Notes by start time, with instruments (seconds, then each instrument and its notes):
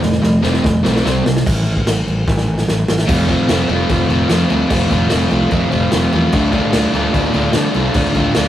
0.01 fingered electric bass F1, overdriven electric guitar F3 A3, snare
0.12 snare
0.22 fingered electric bass F1, overdriven electric guitar F3 A3, snare
0.42 fingered electric bass F1, overdriven electric guitar F3 A3 C4, snare
0.53 snare
0.64 fingered electric bass F1, overdriven electric guitar F3 A3, kick, snare
0.83 fingered electric bass B1, overdriven electric guitar F3 A3 C4, snare
0.96 snare
1.04 fingered electric bass C2, overdriven electric guitar C3 G3 C4, snare
1.25 fingered electric bass C2, overdriven electric guitar C3 G3, snare
1.37 snare
1.46 fingered electric bass A1, kick, crash
1.66 crash
1.77 kick
1.86 fingered electric bass A1, snare, crash
2.06 fingered electric bass A1, crash
2.28 fingered electric bass A1, kick, snare
2.38 snare
2.58 snare
2.68 fingered electric bass A1, snare
2.88 fingered electric bass A1, snare
2.98 snare
3.06 fingered electric bass F1, overdriven electric guitar F3 A3 C4 F4, kick, crash
3.28 overdriven electric guitar F3 A3 C4 F4, kick, crash
3.48 fingered electric bass F1, overdriven electric guitar F3 A3 C4 F4, snare, crash
3.69 fingered electric bass F1, overdriven electric guitar F3 A3 C4 F4, crash
3.89 fingered electric bass F1, overdriven electric guitar F3 A3 C4 F4, kick, crash
4.09 fingered electric bass F1, overdriven electric guitar F3 A3 C4 F4, crash
4.29 fingered electric bass F2, overdriven electric guitar F3 A3 C4 F4, snare, crash
4.49 fingered electric bass D2, overdriven electric guitar F3 A3 C4 F4, crash
4.69 fingered electric bass F1, overdriven electric guitar F3 A3 C4 F4, kick, crash
4.90 fingered electric bass F1, overdriven electric guitar F3 A3 C4 F4, kick, crash
5.09 fingered electric bass F1, overdriven electric guitar F3 A3 C4 F4, snare, crash
5.29 fingered electric bass C2, overdriven electric guitar F3 A3 C4 F4, crash
5.50 fingered electric bass F2, overdriven electric guitar F3 A3 C4 F4, kick, crash
5.71 fingered electric bass F1, overdriven electric guitar F3 A3 C4 F4, crash
5.91 fingered electric bass F1, overdriven electric guitar F3 A3 C4 F4, snare, crash
6.13 fingered electric bass E2, overdriven electric guitar F3 A3 C4 F4, crash
6.32 fingered electric bass D2, overdriven electric guitar D3 A3 D4 F4, kick, crash
6.52 overdriven electric guitar D3 A3 D4 F4, kick, crash
6.72 fingered electric bass D2, overdriven electric guitar D3 A3 D4 F4, snare, crash
6.93 fingered electric bass D2, overdriven electric guitar D3 A3 D4 F4, crash
7.13 fingered electric bass D2, overdriven electric guitar D3 A3 D4 F4, kick, crash
7.33 fingered electric bass D2, overdriven electric guitar D3 A3 D4 F4, crash
7.53 overdriven electric guitar D3 A3 D4 F4, fingered electric bass D3, snare, crash
7.74 fingered electric bass C2, overdriven electric guitar D3 A3 D4 F4, crash
7.94 fingered electric bass D2, overdriven electric guitar D3 A3 D4 F4, kick, crash
8.14 fingered electric bass D2, overdriven electric guitar D3 A3 D4 F4, kick, crash
8.35 fingered electric bass D2, overdriven electric guitar D3 A3 D4 F4, snare, crash